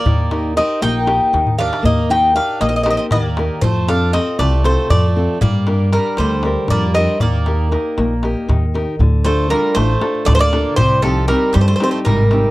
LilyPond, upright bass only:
\new Staff \with { instrumentName = "Upright bass" } { \clef bass \time 7/8 \key ees \lydian \tempo 4 = 118 ees,4. bes,,4 ees,4 | ees,4. bes,,4 ees,4 | f,4. c,4 f,4 | g,4. d,4 f,4 |
ees,4. bes,,4 ees,4 | d,4. a,,8 r8 d,4 | c,4. g,8 r8 gis,,4 | }